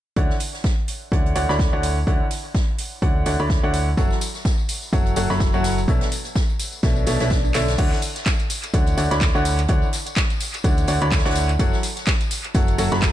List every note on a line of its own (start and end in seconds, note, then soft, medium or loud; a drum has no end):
0.16 0.31 D2 medium
0.16 0.33 D3 medium
0.16 0.33 E4 medium
0.16 0.33 C#5 medium
0.16 0.33 D5 medium
0.16 0.33 F#5 medium
0.16 kick loud
0.16 closed hi-hat medium
0.30 snare soft
0.40 closed hi-hat medium
0.40 open hi-hat medium
0.54 snare soft
0.64 kick loud
0.64 snare medium
0.64 closed hi-hat medium
0.88 closed hi-hat medium
0.88 open hi-hat medium
1.12 1.34 D2 medium
1.12 1.33 D3 medium
1.12 1.33 E4 medium
1.12 1.33 C#5 medium
1.12 1.33 D5 medium
1.12 1.33 F#5 medium
1.12 kick loud
1.12 closed hi-hat medium
1.26 closed hi-hat soft
1.35 1.47 D2 medium
1.35 1.46 D3 medium
1.35 1.46 E4 medium
1.35 1.46 C#5 medium
1.35 1.46 D5 medium
1.35 1.46 F#5 medium
1.35 closed hi-hat medium
1.35 open hi-hat medium
1.49 1.70 D2 loud
1.49 1.70 D3 medium
1.49 1.70 E4 medium
1.49 1.70 C#5 medium
1.49 1.70 D5 medium
1.49 1.70 B5 medium
1.49 snare soft
1.59 kick loud
1.59 snare loud
1.59 closed hi-hat medium
1.73 2.05 D2 medium
1.73 1.97 D3 medium
1.73 1.97 E4 medium
1.73 1.97 C#5 medium
1.73 1.97 D5 medium
1.73 1.97 F#5 medium
1.83 closed hi-hat medium
1.83 open hi-hat medium
2.07 2.21 D2 medium
2.07 2.23 D3 medium
2.07 2.23 E4 medium
2.07 2.23 C#5 medium
2.07 2.23 D5 medium
2.07 2.23 F#5 medium
2.07 kick loud
2.07 closed hi-hat medium
2.30 snare soft
2.30 closed hi-hat medium
2.30 open hi-hat medium
2.54 kick loud
2.54 snare loud
2.54 closed hi-hat medium
2.78 closed hi-hat medium
2.78 open hi-hat loud
3.02 3.24 D2 medium
3.02 3.24 D3 medium
3.02 3.24 E4 medium
3.02 3.24 C#5 medium
3.02 3.24 D5 medium
3.02 3.24 F#5 medium
3.02 kick loud
3.02 closed hi-hat medium
3.26 3.37 D2 medium
3.26 3.36 D3 medium
3.26 3.36 E4 medium
3.26 3.36 C#5 medium
3.26 3.36 D5 medium
3.26 3.36 F#5 medium
3.26 snare soft
3.26 closed hi-hat medium
3.26 open hi-hat medium
3.39 3.61 D2 medium
3.39 3.60 D3 medium
3.39 3.60 E4 medium
3.39 3.60 C#5 medium
3.39 3.60 D5 medium
3.39 3.60 B5 medium
3.39 closed hi-hat soft
3.50 kick loud
3.50 snare loud
3.50 closed hi-hat medium
3.63 3.96 D2 medium
3.63 3.87 D3 medium
3.63 3.87 E4 medium
3.63 3.87 C#5 medium
3.63 3.87 D5 medium
3.63 3.87 F#5 loud
3.74 closed hi-hat medium
3.74 open hi-hat medium
3.97 4.12 F#1 medium
3.97 4.14 F#3 medium
3.97 4.14 E4 medium
3.97 4.14 A4 medium
3.97 4.14 C#5 medium
3.97 4.14 F#5 medium
3.97 kick loud
3.97 closed hi-hat medium
3.97 tambourine soft
4.10 snare soft
4.10 tambourine soft
4.21 closed hi-hat medium
4.21 open hi-hat loud
4.21 tambourine medium
4.35 snare soft
4.35 tambourine soft
4.45 kick loud
4.45 snare loud
4.45 closed hi-hat medium
4.45 tambourine medium
4.59 tambourine soft
4.68 closed hi-hat medium
4.68 open hi-hat loud
4.68 tambourine medium
4.82 tambourine soft
4.93 5.15 F#1 medium
4.93 5.14 F#3 medium
4.93 5.14 E4 medium
4.93 5.14 A4 medium
4.93 5.14 C#5 medium
4.93 5.14 F#5 medium
4.93 kick loud
4.93 closed hi-hat medium
4.93 tambourine soft
5.06 closed hi-hat soft
5.06 tambourine soft
5.16 5.27 F#1 medium
5.16 5.27 F#3 medium
5.16 5.27 E4 medium
5.16 5.27 A4 medium
5.16 5.27 C#5 medium
5.16 5.27 F#5 medium
5.16 closed hi-hat medium
5.16 open hi-hat loud
5.16 tambourine medium
5.30 5.51 F#1 loud
5.30 5.51 F#3 medium
5.30 5.51 E4 medium
5.30 5.51 A4 medium
5.30 5.51 C#5 medium
5.30 5.51 B5 medium
5.30 snare soft
5.30 tambourine soft
5.40 kick loud
5.40 snare loud
5.40 closed hi-hat medium
5.40 tambourine medium
5.54 5.86 F#1 medium
5.54 5.78 F#3 medium
5.54 5.78 E4 medium
5.54 5.78 A4 medium
5.54 5.78 C#5 medium
5.54 5.78 F#5 loud
5.54 tambourine soft
5.64 snare medium
5.64 closed hi-hat medium
5.64 open hi-hat loud
5.64 tambourine medium
5.78 tambourine soft
5.88 6.02 B1 medium
5.88 6.04 B2 medium
5.88 6.04 D4 medium
5.88 6.04 A4 medium
5.88 6.04 C#5 medium
5.88 6.04 E5 medium
5.88 kick loud
5.88 closed hi-hat medium
5.88 tambourine soft
6.01 snare medium
6.01 closed hi-hat medium
6.01 tambourine soft
6.12 open hi-hat medium
6.12 tambourine medium
6.25 closed hi-hat medium
6.25 tambourine soft
6.35 kick loud
6.35 snare loud
6.35 closed hi-hat medium
6.35 tambourine medium
6.50 tambourine soft
6.59 closed hi-hat medium
6.59 open hi-hat loud
6.59 tambourine medium
6.73 tambourine soft
6.83 7.05 B1 medium
6.83 7.05 B2 medium
6.83 7.05 D4 medium
6.83 7.05 A4 medium
6.83 7.05 C#5 medium
6.83 7.05 E5 medium
6.83 kick loud
6.83 snare loud
6.83 closed hi-hat medium
6.83 tambourine soft
6.83 swell medium
6.96 tambourine soft
7.07 7.18 B1 medium
7.07 7.17 B2 medium
7.07 7.17 D4 medium
7.07 7.17 A4 medium
7.07 7.17 C#5 medium
7.07 7.17 E5 medium
7.07 snare medium
7.07 closed hi-hat medium
7.07 open hi-hat loud
7.07 tambourine medium
7.20 7.53 B1 medium
7.20 7.34 B2 medium
7.20 7.34 D4 medium
7.20 7.34 A4 medium
7.20 7.34 C#5 medium
7.20 7.34 E5 medium
7.20 snare loud
7.20 closed hi-hat medium
7.20 tambourine soft
7.30 kick loud
7.30 snare loud
7.30 closed hi-hat medium
7.30 tambourine medium
7.45 tambourine soft
7.54 7.76 B1 medium
7.54 7.71 D3 medium
7.54 7.71 D4 medium
7.54 7.71 A4 medium
7.54 7.71 C#5 medium
7.54 7.71 E5 medium
7.54 snare medium
7.54 clap medium
7.54 closed hi-hat medium
7.54 open hi-hat medium
7.54 tambourine medium
7.68 snare medium
7.68 closed hi-hat medium
7.68 tambourine soft
7.78 7.93 D2 loud
7.78 7.95 D3 medium
7.78 7.95 E4 medium
7.78 7.95 C#5 medium
7.78 7.95 D5 medium
7.78 7.95 F#5 medium
7.78 kick loud
7.78 closed hi-hat medium
7.78 crash medium
7.78 tambourine soft
7.92 snare soft
7.92 tambourine soft
8.02 closed hi-hat medium
8.02 open hi-hat medium
8.02 tambourine medium
8.16 snare soft
8.16 closed hi-hat medium
8.16 tambourine soft
8.25 kick loud
8.25 snare loud
8.25 clap loud
8.25 closed hi-hat medium
8.25 tambourine medium
8.39 closed hi-hat soft
8.39 tambourine soft
8.50 closed hi-hat medium
8.50 open hi-hat loud
8.50 tambourine medium
8.63 closed hi-hat medium
8.63 tambourine soft
8.73 8.96 D2 medium
8.73 8.95 D3 medium
8.73 8.95 E4 medium
8.73 8.95 C#5 medium
8.73 8.95 D5 medium
8.73 8.95 F#5 medium
8.73 kick loud
8.73 closed hi-hat medium
8.73 tambourine soft
8.87 closed hi-hat soft
8.87 tambourine soft
8.97 9.08 D2 medium
8.97 9.08 D3 medium
8.97 9.08 E4 medium
8.97 9.08 C#5 medium
8.97 9.08 D5 medium
8.97 9.08 F#5 medium
8.97 closed hi-hat medium
8.97 open hi-hat loud
8.97 tambourine medium
9.11 9.32 D2 loud
9.11 9.32 D3 medium
9.11 9.32 E4 medium
9.11 9.32 C#5 medium
9.11 9.32 D5 medium
9.11 9.32 B5 medium
9.11 snare soft
9.11 closed hi-hat medium
9.11 tambourine soft
9.21 kick loud
9.21 snare loud
9.21 clap loud
9.21 closed hi-hat medium
9.21 tambourine soft
9.35 9.67 D2 loud
9.35 9.59 D3 medium
9.35 9.59 E4 medium
9.35 9.59 C#5 medium
9.35 9.59 D5 medium
9.35 9.59 F#5 loud
9.35 tambourine soft
9.45 closed hi-hat medium
9.45 open hi-hat medium
9.45 tambourine medium
9.59 closed hi-hat soft
9.59 tambourine soft
9.68 9.83 D2 medium
9.68 9.85 D3 medium
9.68 9.85 E4 medium
9.68 9.85 C#5 medium
9.68 9.85 D5 medium
9.68 9.85 F#5 medium
9.68 kick loud
9.68 closed hi-hat medium
9.68 tambourine soft
9.83 tambourine soft
9.93 snare soft
9.93 closed hi-hat medium
9.93 open hi-hat loud
9.93 tambourine medium
10.07 closed hi-hat soft
10.07 tambourine soft
10.16 kick loud
10.16 snare loud
10.16 clap loud
10.16 closed hi-hat medium
10.16 tambourine medium
10.30 closed hi-hat soft
10.30 tambourine soft
10.40 closed hi-hat medium
10.40 open hi-hat loud
10.40 tambourine medium
10.54 closed hi-hat medium
10.54 tambourine soft
10.64 10.86 D2 medium
10.64 10.86 D3 medium
10.64 10.86 E4 medium
10.64 10.86 C#5 medium
10.64 10.86 D5 medium
10.64 10.86 F#5 medium
10.64 kick loud
10.64 closed hi-hat medium
10.64 tambourine medium
10.78 closed hi-hat soft
10.78 tambourine soft
10.87 10.99 D2 medium
10.87 10.98 D3 medium
10.87 10.98 E4 medium
10.87 10.98 C#5 medium
10.87 10.98 D5 medium
10.87 10.98 F#5 medium
10.87 snare soft
10.87 closed hi-hat medium
10.87 open hi-hat loud
10.87 tambourine medium
11.01 11.23 D2 medium
11.01 11.22 D3 medium
11.01 11.22 E4 medium
11.01 11.22 C#5 medium
11.01 11.22 D5 medium
11.01 11.22 B5 medium
11.01 closed hi-hat soft
11.01 tambourine soft
11.11 kick loud
11.11 snare medium
11.11 clap loud
11.11 closed hi-hat medium
11.11 tambourine medium
11.19 snare medium
11.19 closed hi-hat medium
11.25 11.57 D2 loud
11.25 11.49 D3 medium
11.25 11.49 E4 medium
11.25 11.49 C#5 medium
11.25 11.49 D5 medium
11.25 11.49 F#5 loud
11.25 snare medium
11.25 closed hi-hat medium
11.25 tambourine soft
11.30 snare medium
11.30 closed hi-hat medium
11.35 closed hi-hat medium
11.35 open hi-hat loud
11.35 tambourine medium
11.49 closed hi-hat soft
11.49 tambourine soft
11.59 11.74 F#1 medium
11.59 11.76 F#3 medium
11.59 11.76 E4 medium
11.59 11.76 A4 medium
11.59 11.76 C#5 medium
11.59 11.76 F#5 medium
11.59 kick loud
11.59 closed hi-hat medium
11.59 tambourine medium
11.73 snare soft
11.73 tambourine soft
11.83 closed hi-hat medium
11.83 open hi-hat loud
11.83 tambourine medium
11.97 snare soft
11.97 closed hi-hat soft
11.97 tambourine soft
12.07 kick loud
12.07 snare loud
12.07 clap loud
12.07 closed hi-hat medium
12.07 tambourine medium
12.21 closed hi-hat soft
12.21 tambourine soft
12.31 closed hi-hat medium
12.31 open hi-hat loud
12.31 tambourine loud
12.44 closed hi-hat soft
12.44 tambourine soft
12.54 12.76 F#1 loud
12.54 12.76 F#3 medium
12.54 12.76 E4 medium
12.54 12.76 A4 medium
12.54 12.76 C#5 medium
12.54 12.76 F#5 medium
12.54 kick loud
12.54 closed hi-hat medium
12.54 tambourine medium
12.68 closed hi-hat soft
12.68 tambourine soft
12.78 12.89 F#1 loud
12.78 12.89 F#3 medium
12.78 12.89 E4 medium
12.78 12.89 A4 medium
12.78 12.89 C#5 medium
12.78 12.89 F#5 medium
12.78 closed hi-hat medium
12.78 open hi-hat loud
12.78 tambourine loud
12.92 13.12 F#1 loud
12.92 13.12 F#3 medium
12.92 13.12 E4 medium
12.92 13.12 A4 medium
12.92 13.12 C#5 medium
12.92 13.12 B5 medium
12.92 snare medium
12.92 closed hi-hat soft
12.92 tambourine soft
13.02 kick loud
13.02 snare loud
13.02 clap loud
13.02 closed hi-hat medium
13.02 tambourine medium